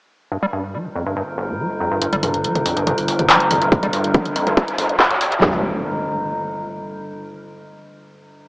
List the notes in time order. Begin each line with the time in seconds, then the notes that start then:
0.32 G2 D3
0.43 G3
0.53 G2
0.74 G3
0.85 G2
0.95 F2
1.06 G2
1.17 G2
1.38 G1
1.49 A#2
1.59 G3
1.80 F2
1.92 G2
2.02 G2 D3, closed hi-hat, riser
2.13 G1 G3, closed hi-hat
2.23 G2, mid tom, open hi-hat
2.34 G1, closed hi-hat
2.44 G3, closed hi-hat
2.55 G1 G2, closed hi-hat, mid tom
2.65 F2, open hi-hat
2.77 G1 G2, closed hi-hat
2.87 G2, closed hi-hat, mid tom
2.98 G1, open hi-hat
3.08 G1, open hi-hat
3.19 G1 A#2, closed hi-hat, mid tom
3.29 G3, clap, closed hi-hat
3.40 closed hi-hat
3.51 G1 F2, mid tom, open hi-hat
3.62 G1 G2, closed hi-hat
3.72 G2, kick, closed hi-hat
3.83 G1 G3, closed hi-hat, mid tom
3.93 G2, open hi-hat
4.04 G1, closed hi-hat
4.14 G3, kick, closed hi-hat, mid tom
4.25 G1 G2, closed hi-hat
4.36 F2, open hi-hat
4.47 G1 G2, closed hi-hat, mid tom
4.57 G2, kick, closed hi-hat
4.68 G1, closed hi-hat
4.78 G1, mid tom, open hi-hat
4.89 G1 A#2, closed hi-hat
5.00 G3, kick, clap, open hi-hat
5.11 closed hi-hat, mid tom
5.21 G1 F2, open hi-hat
5.32 G1 G2, closed hi-hat
5.42 G1 G2, kick, snare, clap, impact